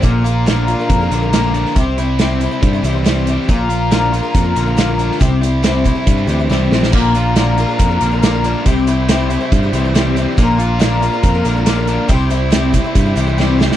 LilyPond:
<<
  \new Staff \with { instrumentName = "Tonewheel organ" } { \time 4/4 \key bes \lydian \tempo 4 = 139 r1 | r1 | r1 | r1 |
<d' f' bes'>1 | <e' g' c''>1 | <d' f' bes'>1 | <e' g' c''>1 | }
  \new Staff \with { instrumentName = "Twelve-string acoustic guitar" } { \time 4/4 \key bes \lydian <bes, d f bes d' bes'>8 <f bes d' bes'>8 <bes, d f bes d' bes'>8 <f bes d' bes'>16 <f bes d' bes'>8 <f bes d' bes'>16 <f bes d' bes'>16 <f bes d' bes'>16 <bes, d f bes d' bes'>8 <f bes d' bes'>8 | <c g c' e' c''>8 <g c' e' c''>8 <c g c' e' c''>8 <g c' e' c''>16 <c' e' c''>8 <c' e' c''>16 <g c' e' c''>16 <c' e' c''>16 <c g c' e' c''>8 <g c' e' c''>8 | <bes, d f bes f' bes'>8 <f bes f' bes'>8 <bes, d f bes f' bes'>8 <f bes f' bes'>16 <f bes f' bes'>8 <f bes f' bes'>16 <f bes f' bes'>16 <f bes f' bes'>16 <bes, d f bes f' bes'>16 <f bes f' bes'>16 <f bes f' bes'>8 | <c g c' e' c''>8 <g c' e' c''>8 <c g c' e' c''>8 <g c' e' c''>16 <c' e' c''>8 <c' e' c''>16 <g c' e' c''>16 <c' e' c''>16 <c g c' e' c''>8 <g c' e' c''>8 |
<bes, d f bes d' bes'>8 <d' bes'>8 <bes, d f bes d' bes'>8 <f bes d' bes'>16 <f bes d' bes'>8 <f bes d' bes'>16 <f bes d' bes'>16 <f bes d' bes'>16 <bes, d f bes d' bes'>16 <f bes d' bes'>16 <f bes d' bes'>8 | <c g c' e' c''>8 <g c' e' c''>8 <c g c' e' c''>8 <g c' e' c''>16 <c' e' c''>8 <c' e' c''>16 <g c' e' c''>16 <c' e' c''>16 <c g c' e' c''>8 <g c' e' c''>8 | <bes, d f bes d' bes'>8 <f bes d' bes'>8 <bes, d f bes d' bes'>8 <f bes d' bes'>16 <f bes d' bes'>8 <f bes d' bes'>16 <f bes d' bes'>16 <f bes d' bes'>16 <bes, d f bes d' bes'>16 <f bes d' bes'>16 <f bes d' bes'>8 | <c g c' e' c''>8 <g c' e' c''>8 <c g c' e' c''>8 <g c' e' c''>16 <c' e' c''>8 <c' e' c''>16 <g c' e' c''>16 <c' e' c''>16 <c g c' e' c''>8 <g c' e' c''>8 | }
  \new Staff \with { instrumentName = "Overdriven electric guitar" } { \time 4/4 \key bes \lydian bes,8 f'8 d'8 f'8 bes8 d8 bes8 d'8 | c8 e'8 c'8 e'8 g8 e8 g8 c'8 | bes,8 f'8 d'8 f'8 bes8 d8 bes8 d'8 | c8 e'8 c'8 e'8 g8 e8 g8 c'8 |
bes,8 f'8 d'8 f'8 bes8 d8 bes8 d'8 | c8 e'8 c'8 e'8 g8 e8 g8 c'8 | bes,8 f'8 d'8 f'8 bes8 d8 bes8 d'8 | c8 e'8 c'8 e'8 g8 e8 g8 c'8 | }
  \new Staff \with { instrumentName = "Picked electric bass" } { \clef bass \time 4/4 \key bes \lydian bes,,2 f,8 bes,,4. | c,2 g,8 c,4. | bes,,2 f,8 bes,,4. | c,2 g,8 d,8 c,8 bes,,8 |
bes,,2 f,8 bes,,4. | c,2 g,8 c,4. | bes,,2 f,8 bes,,4. | c,2 g,8 c,4. | }
  \new DrumStaff \with { instrumentName = "Drums" } \drummode { \time 4/4 <hh bd>8 hh8 <hh sn>8 hh8 <hh bd>8 hh8 <hh sn>8 hh16 sn16 | <hh bd>8 hh8 <hh sn>8 hh8 <hh bd>8 hh8 <hh sn>8 hh8 | <hh bd>8 hh8 <hh sn>8 hh8 <hh bd>8 hh8 <hh sn>8 hh16 sn16 | <hh bd>8 hh8 <hh sn>8 <hh bd>8 <hh bd>8 hh8 sn8 sn16 sn16 |
<cymc bd>8 hh8 <hh sn>8 hh8 <hh bd>8 hh8 <hh sn>8 hh8 | <hh bd>8 hh8 <hh sn>8 hh8 <hh bd>8 hh8 <hh sn>8 hh8 | <hh bd>8 hh8 <hh sn>8 hh8 <hh bd>8 hh8 <hh sn>8 hh8 | <hh bd>8 hh8 <hh sn>8 <hh bd>8 <hh bd>8 hh8 sn8 sn16 sn16 | }
>>